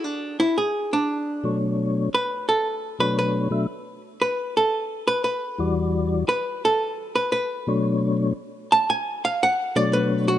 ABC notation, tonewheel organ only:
X:1
M:4/4
L:1/8
Q:"Swing" 1/4=115
K:Bdor
V:1 name="Tonewheel organ"
z4 z [B,,F,A,Dc]3 | z3 [B,,F,A,Dc]2 [B,,F,A,De] z2 | z4 z [E,,E,=G,Fd]3 | z4 z [B,,F,A,Dc]3 |
z4 z [B,,F,A,Dc]3 |]